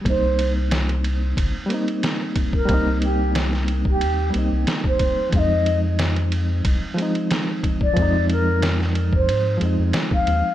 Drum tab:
RD |x-x-xxx-x-xxx-x-|x-x-x-x-x-x-x-x-|x-x-xxx-x-xxx-x-|x-x-x-x-x-x-x-x-|
SD |----o-------o---|----oo------o---|----o-------o---|----oo------o---|
BD |o-------o-----oo|o------o-----oo-|o-------o-----oo|o------o-----o--|